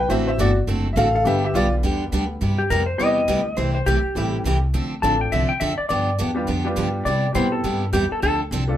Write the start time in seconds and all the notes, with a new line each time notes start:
0.08 A1 D3 E3 F#3 A3 C4 F#4 A4 C5 E5
0.27 C5 E5
0.38 G1 D3 A3 C4 F#4 A4 D5
0.67 F#1 D3 A3 C4 F#4 A4
0.93 A1 D3 E5
0.97 A3 C4 F#4 A4 F5
1.15 A4 F5
1.24 G1 D3 G3 B3 D4 G4 E5
1.44 G4 E5
1.54 B1 D3 G3 B3 D4 F4 G4 D5
1.83 E2 D3 G3 B3 D4 G4
2.12 D2 D3 G3 B3 D4 G4
2.41 G2 C3 G3 B3 E4 G4
2.58 G4
2.70 F2 C3 G3 B3 E4 G4 A#4
2.86 C5
2.98 E2 C3 G3 B3 C4 E4 G4 D#5
3.28 D2 C3 G3 B3 E4 G4
3.57 C2 C3 E3 A3 E4 G4 C5
3.75 C5
3.86 B1 C3 E3 A3 E4 G4
4.04 muted upright bass stroke
4.15 A1 C3 E3 G3 A3 C4 E4 G4
4.44 C2 C3 E3 A3 E4 G4
4.74 D2 D3 F3 C4 D4 A4
5.02 A1 D3 F3 A3 C4 D4 F4 A4 A5
5.21 G5
5.32 C2 D3 F3 C4 D4 A4 E5
5.49 G5, muted upright bass stroke
5.60 F2 D3 F3 C4 D4 A4 E5
5.78 D5, muted upright bass stroke
5.89 G2 D3 F3 B3 D4 G4 D5
6.18 E2 D3 F3 B3 D4 G4
6.34 G3 B3 D4 F4 G4
6.47 F2 D3 F3 B3 D4 G4
6.65 G3 B3 D4 F4 G4
6.76 G2 D3 F3 B3 D4 G4
7.05 C3 G3 B3 E4 G4 D5
7.33 B2 C3 G3 B3 C4 E4 G4 C5
7.52 A4
7.64 G2 C3 G3 B3 E4 G4
7.93 E2 C3 G3 B3 E4 G4
8.11 A4, muted upright bass stroke
8.22 D2 D3 F3 C4 D4 A4
8.51 C2 D3 F3 C4 D4 A4
8.68 A3 C4 D4 F4 A4